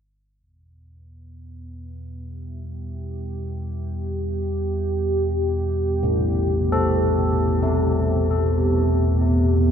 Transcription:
0.38 9.71 E2 medium
0.38 9.71 B2 medium
0.38 9.71 B3 medium
1.50 9.71 G4 medium
1.58 9.71 E5 medium
6.03 9.71 A2 soft
6.72 9.71 A4 medium
7.63 9.71 A3 medium

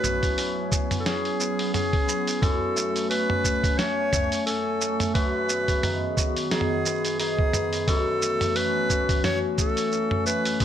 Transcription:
0.00 2.41 F#2 medium
0.00 2.40 F#3 medium
0.00 0.78 A3 medium
0.00 2.40 B3 medium
0.00 1.39 B3 medium
0.00 0.37 C#4 medium
0.00 5.11 C#4 medium
0.00 2.38 E4 medium
0.00 1.24 F#4 medium
0.00 0.71 G#4 medium
0.00 0.76 B4 loud
0.00 mid tom medium
0.04 shaker medium
0.23 kick medium
0.23 open hi-hat soft
0.23 shaker soft
0.38 1.05 C#4 medium
0.38 open hi-hat medium
0.38 shaker soft
0.72 5.87 G#4 medium
0.72 kick loud
0.72 shaker medium
0.91 mid tom medium
0.91 open hi-hat soft
0.91 shaker soft
1.00 1.07 A4 medium
1.06 1.74 C#4 medium
1.06 1.73 G#4 loud
1.06 snare medium
1.06 open hi-hat soft
1.06 shaker soft
1.25 open hi-hat soft
1.40 2.08 B3 medium
1.40 shaker medium
1.59 open hi-hat soft
1.74 3.10 C#4 medium
1.74 2.43 G#4 loud
1.74 mid tom medium
1.74 open hi-hat medium
1.74 shaker soft
1.93 kick loud
1.93 open hi-hat soft
2.08 5.49 B3 medium
2.08 shaker medium
2.27 open hi-hat soft
2.27 shaker soft
2.42 10.65 F#2 medium
2.42 5.14 F#2 medium
2.42 5.12 A3 medium
2.42 3.09 A4 medium
2.42 5.12 G#5 medium
2.42 kick loud
2.42 mid tom medium
2.42 open hi-hat medium
2.42 shaker soft
2.76 4.12 A3 medium
2.76 shaker medium
2.96 open hi-hat soft
2.96 shaker soft
3.10 3.78 C#4 medium
3.10 3.80 B4 loud
3.10 open hi-hat medium
3.10 shaker soft
3.30 mid tom medium
3.44 kick medium
3.44 shaker medium
3.64 kick loud
3.64 open hi-hat soft
3.64 shaker soft
3.78 4.46 C#4 medium
3.78 4.46 C#5 loud
3.78 snare medium
3.78 open hi-hat medium
3.78 shaker soft
4.12 4.80 A3 medium
4.12 kick loud
4.12 mid tom medium
4.12 shaker medium
4.32 open hi-hat soft
4.32 shaker soft
4.46 8.33 C#4 medium
4.46 5.11 A4 medium
4.46 open hi-hat medium
4.46 shaker soft
4.81 8.21 A3 medium
4.81 shaker medium
5.00 mid tom medium
5.00 open hi-hat soft
5.00 shaker soft
5.15 7.87 F#2 medium
5.15 7.85 D#3 medium
5.15 7.85 B3 medium
5.15 6.17 F#4 medium
5.15 7.85 G#4 medium
5.15 6.21 B4 loud
5.15 kick loud
5.15 open hi-hat medium
5.15 shaker soft
5.49 6.85 B3 medium
5.49 shaker medium
5.68 kick medium
5.68 open hi-hat soft
5.68 shaker soft
5.83 6.51 D#4 medium
5.83 mid tom medium
5.83 open hi-hat medium
5.83 shaker soft
6.17 7.88 F#4 medium
6.17 kick loud
6.17 shaker medium
6.37 open hi-hat soft
6.37 shaker soft
6.51 7.19 D#4 medium
6.51 7.15 G#4 loud
6.51 snare medium
6.51 open hi-hat medium
6.51 shaker soft
6.61 mid tom medium
6.85 7.53 B3 medium
6.85 shaker medium
7.05 open hi-hat soft
7.05 shaker soft
7.19 10.65 D#4 medium
7.19 7.90 G#4 loud
7.19 open hi-hat medium
7.19 shaker soft
7.39 kick loud
7.54 10.65 B3 medium
7.54 mid tom medium
7.54 shaker medium
7.73 open hi-hat soft
7.73 shaker soft
7.88 10.59 F#2 medium
7.88 10.65 E3 medium
7.88 10.58 A3 medium
7.88 10.58 F#4 medium
7.88 8.90 F#4 medium
7.88 8.58 A4 loud
7.88 kick loud
7.88 open hi-hat medium
7.88 shaker soft
8.22 9.58 A3 medium
8.22 shaker medium
8.41 mid tom medium
8.41 open hi-hat soft
8.41 shaker soft
8.56 9.24 C#4 medium
8.56 9.23 B4 loud
8.56 open hi-hat medium
8.56 shaker soft
8.90 10.65 F#4 medium
8.90 kick medium
8.90 shaker medium
9.09 kick loud
9.09 open hi-hat soft
9.09 shaker soft
9.24 9.92 C#4 medium
9.24 9.39 C#5 loud
9.24 snare medium
9.24 mid tom medium
9.24 open hi-hat medium
9.24 shaker soft
9.58 10.26 A3 medium
9.58 10.23 A4 loud
9.58 kick loud
9.58 shaker medium
9.77 open hi-hat soft
9.77 shaker soft
9.92 10.65 C#4 medium
9.92 shaker soft
10.11 mid tom medium
10.26 10.65 A3 medium
10.26 10.65 B4 loud
10.26 shaker medium
10.45 open hi-hat soft
10.45 shaker soft
10.60 10.65 F#2 medium
10.60 10.65 B3 medium
10.60 10.65 C#4 medium
10.60 10.65 G#4 medium
10.60 kick loud
10.60 open hi-hat medium
10.60 shaker soft

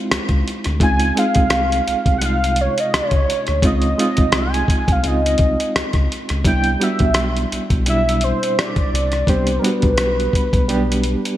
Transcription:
0.00 0.80 G#3 medium
0.00 0.80 C4 medium
0.00 0.81 D#4 medium
0.00 6.47 E4 medium
0.00 0.82 F4 medium
0.00 6.46 G4 medium
0.00 1.18 G#4 medium
0.00 0.47 C5 medium
0.12 0.19 C#2 soft
0.12 cross-stick loud
0.12 closed hi-hat medium
0.29 0.44 C#2 medium
0.29 kick medium
0.29 closed hi-hat soft
0.48 closed hi-hat medium
0.64 0.80 D2 medium
0.64 cross-stick soft
0.64 closed hi-hat soft
0.80 1.12 C#2 loud
0.80 1.10 G#3 medium
0.80 1.10 C4 medium
0.80 1.10 D#4 medium
0.80 1.11 F4 medium
0.80 1.20 G#5 loud
0.80 kick medium
0.80 closed hi-hat medium
1.00 closed hi-hat soft
1.15 2.04 G#3 medium
1.15 2.04 C4 medium
1.15 2.05 D#4 medium
1.15 2.05 G#4 medium
1.15 2.17 F5 loud
1.15 closed hi-hat medium
1.35 1.81 C2 medium
1.35 kick medium
1.35 closed hi-hat soft
1.50 cross-stick loud
1.50 closed hi-hat medium
1.72 closed hi-hat soft
1.88 1.95 C2 soft
1.88 closed hi-hat soft
2.06 2.69 C2 medium
2.06 kick medium
2.06 closed hi-hat soft
2.18 3.38 C3 medium
2.18 3.38 G#3 medium
2.18 2.27 F#5 medium
2.18 closed hi-hat medium
2.23 3.39 D#4 medium
2.23 3.39 F4 medium
2.23 2.62 F5 loud
2.44 closed hi-hat soft
2.56 closed hi-hat medium
2.61 2.81 C#5 medium
2.78 2.97 D#5 medium
2.78 closed hi-hat soft
2.94 3.01 C#2 soft
2.94 3.64 C#5 loud
2.94 cross-stick loud
2.94 closed hi-hat medium
3.11 3.26 C#2 medium
3.11 kick medium
3.11 closed hi-hat soft
3.30 closed hi-hat medium
3.47 3.62 D2 medium
3.47 cross-stick soft
3.47 closed hi-hat soft
3.62 3.94 C#2 loud
3.62 3.92 G#3 medium
3.62 3.93 C4 medium
3.62 3.93 D#4 medium
3.62 3.93 F4 medium
3.62 4.39 D#5 loud
3.62 kick medium
3.62 closed hi-hat medium
3.82 closed hi-hat soft
3.98 4.86 G#3 medium
3.98 4.87 C4 medium
3.98 4.87 D#4 medium
3.98 4.87 F4 medium
3.98 closed hi-hat medium
4.17 4.64 C2 medium
4.17 kick medium
4.17 closed hi-hat soft
4.32 cross-stick loud
4.32 closed hi-hat medium
4.37 4.93 G#5 loud
4.54 closed hi-hat soft
4.68 4.77 C2 soft
4.68 kick medium
4.68 closed hi-hat medium
4.88 5.02 C2 medium
4.88 5.09 F5 medium
4.88 kick medium
4.88 closed hi-hat soft
5.03 5.36 C#2 medium
5.03 6.20 G#3 medium
5.03 6.20 C4 medium
5.03 6.21 D#4 medium
5.03 6.21 F4 medium
5.03 closed hi-hat medium
5.07 6.12 D#5 medium
5.26 closed hi-hat soft
5.38 5.57 C2 medium
5.38 kick medium
5.38 closed hi-hat medium
5.60 closed hi-hat soft
5.76 5.83 C#2 soft
5.76 cross-stick loud
5.76 closed hi-hat medium
5.93 6.08 C#2 medium
5.93 kick medium
5.93 cross-stick soft
5.93 closed hi-hat soft
6.12 closed hi-hat medium
6.29 6.44 C#2 medium
6.29 cross-stick soft
6.29 closed hi-hat soft
6.45 6.76 C2 medium
6.45 6.74 G3 medium
6.45 6.75 B3 medium
6.45 6.75 D4 medium
6.45 6.75 E4 medium
6.45 6.85 G5 loud
6.45 kick medium
6.45 closed hi-hat medium
6.64 closed hi-hat soft
6.80 7.68 G3 medium
6.80 7.69 B3 medium
6.80 7.69 D4 medium
6.80 7.70 F#4 medium
6.80 7.52 E5 loud
6.80 closed hi-hat medium
6.99 7.46 B1 medium
6.99 kick medium
6.99 closed hi-hat soft
7.14 cross-stick loud
7.14 closed hi-hat medium
7.37 closed hi-hat soft
7.52 7.60 B1 soft
7.52 closed hi-hat soft
7.70 8.33 B1 medium
7.70 kick medium
7.70 closed hi-hat soft
7.86 9.03 B2 medium
7.86 9.03 G3 medium
7.86 9.04 D4 medium
7.86 9.04 E4 medium
7.86 8.25 E5 loud
7.86 closed hi-hat medium
8.09 closed hi-hat soft
8.21 8.61 C5 medium
8.21 closed hi-hat medium
8.43 closed hi-hat soft
8.59 9.31 D5 loud
8.59 cross-stick loud
8.59 closed hi-hat medium
8.76 kick medium
8.76 closed hi-hat soft
8.94 9.24 C2 medium
8.94 closed hi-hat medium
9.12 cross-stick soft
9.12 closed hi-hat soft
9.27 9.59 C2 loud
9.27 9.57 G3 medium
9.27 9.57 B3 medium
9.27 9.57 D4 medium
9.27 9.58 G4 medium
9.27 9.61 C5 medium
9.27 kick medium
9.27 closed hi-hat medium
9.47 closed hi-hat soft
9.59 10.51 G3 medium
9.59 10.51 B3 medium
9.59 9.67 A#4 medium
9.64 10.52 D4 medium
9.64 10.52 F#4 medium
9.64 11.37 B4 medium
9.64 closed hi-hat medium
9.82 10.28 B1 medium
9.82 kick medium
9.82 closed hi-hat soft
9.98 cross-stick loud
9.98 closed hi-hat medium
10.20 closed hi-hat soft
10.33 10.42 B1 soft
10.33 kick medium
10.33 closed hi-hat medium
10.53 11.16 B1 medium
10.53 kick medium
10.53 closed hi-hat soft
10.68 11.37 G3 medium
10.68 11.37 B3 medium
10.68 11.37 D4 medium
10.68 11.37 G4 medium
10.68 closed hi-hat medium
10.92 closed hi-hat soft
11.04 closed hi-hat medium
11.25 closed hi-hat soft

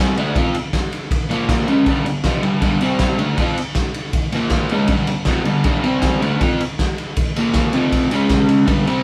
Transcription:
0.00 0.16 C3 medium
0.00 0.17 G3 medium
0.00 0.17 C4 medium
0.17 0.35 D3 medium
0.17 0.36 A3 medium
0.17 0.36 D4 loud
0.17 ride medium
0.36 0.54 F3 medium
0.36 0.55 C4 medium
0.36 0.55 F4 loud
0.36 kick loud
0.36 ride medium
0.54 ride medium
0.73 kick medium
0.73 snare loud
0.73 ride medium
0.93 ride medium
1.11 kick loud
1.11 ride loud
1.29 1.67 A#2 medium
1.29 1.67 F3 medium
1.29 1.68 A#3 medium
1.29 ride medium
1.49 kick loud
1.49 snare loud
1.49 ride loud
1.68 1.86 C#3 medium
1.68 1.87 G#3 medium
1.68 1.87 C#4 loud
1.68 ride medium
1.86 2.04 G2 medium
1.86 2.05 D3 medium
1.86 2.06 G3 medium
1.86 kick loud
1.86 ride medium
2.06 2.21 G2 medium
2.06 2.21 D3 medium
2.06 ride medium
2.24 2.42 F2 medium
2.24 2.43 C3 medium
2.24 2.44 F3 medium
2.24 kick loud
2.24 snare loud
2.24 ride medium
2.43 2.61 G2 medium
2.43 2.62 D3 medium
2.43 2.62 G3 loud
2.43 ride medium
2.62 2.80 G2 medium
2.62 2.81 D3 medium
2.62 2.81 G3 loud
2.62 kick loud
2.62 ride loud
2.81 3.18 C3 medium
2.81 3.18 G3 medium
2.81 3.19 C4 medium
2.81 ride medium
2.99 kick loud
2.99 snare loud
2.99 ride medium
3.18 3.37 D3 loud
3.18 3.37 A3 loud
3.18 3.38 D4 loud
3.18 ride medium
3.38 3.56 F3 loud
3.38 3.57 C4 loud
3.38 3.57 F4 loud
3.38 kick loud
3.38 ride medium
3.58 ride medium
3.75 kick loud
3.75 snare loud
3.75 ride medium
3.94 ride medium
4.13 kick loud
4.13 ride loud
4.32 4.70 A#2 medium
4.32 4.70 F3 loud
4.32 4.71 A#3 loud
4.32 ride medium
4.50 kick loud
4.50 snare loud
4.50 ride medium
4.69 4.88 C#3 medium
4.69 4.89 G#3 loud
4.69 4.90 C#4 loud
4.69 ride medium
4.88 5.07 G2 medium
4.88 5.07 D3 loud
4.88 5.08 G3 loud
4.88 kick loud
4.88 ride medium
5.07 5.23 G2 medium
5.07 5.24 D3 medium
5.07 ride medium
5.25 5.45 F2 medium
5.25 5.45 C3 medium
5.25 5.46 F3 medium
5.25 kick loud
5.25 snare loud
5.25 ride medium
5.45 5.63 G2 medium
5.45 5.64 D3 medium
5.45 5.65 G3 loud
5.45 ride medium
5.64 5.83 G2 medium
5.64 5.82 D3 medium
5.64 5.83 G3 loud
5.64 kick loud
5.64 ride medium
5.83 6.20 C3 medium
5.83 6.21 G3 medium
5.83 6.22 C4 loud
5.83 ride medium
6.02 kick loud
6.02 snare loud
6.02 ride medium
6.21 6.40 D3 medium
6.21 6.40 A3 loud
6.21 6.40 D4 medium
6.21 ride medium
6.41 6.59 F3 medium
6.41 6.60 C4 medium
6.41 6.60 F4 loud
6.41 kick loud
6.41 ride medium
6.61 ride medium
6.79 kick loud
6.79 snare loud
6.79 ride medium
6.98 ride medium
7.16 kick loud
7.16 ride loud
7.36 7.73 A#2 medium
7.36 7.73 F3 medium
7.36 7.74 A#3 medium
7.36 ride medium
7.54 kick loud
7.54 snare loud
7.54 ride medium
7.73 8.11 F2 medium
7.73 8.11 C3 loud
7.73 8.12 F3 loud
7.73 ride medium
7.92 kick loud
7.92 ride medium
8.11 8.67 C#3 medium
8.11 8.67 G#3 medium
8.11 8.69 C#4 medium
8.11 ride medium
8.30 kick loud
8.30 snare loud
8.30 ride medium
8.49 ride medium
8.66 8.85 G2 medium
8.66 8.86 D3 loud
8.66 8.86 G3 loud
8.66 kick loud
8.66 ride medium
8.87 9.03 C3 medium
8.87 9.03 G3 medium
8.87 9.03 C4 loud
8.87 ride medium

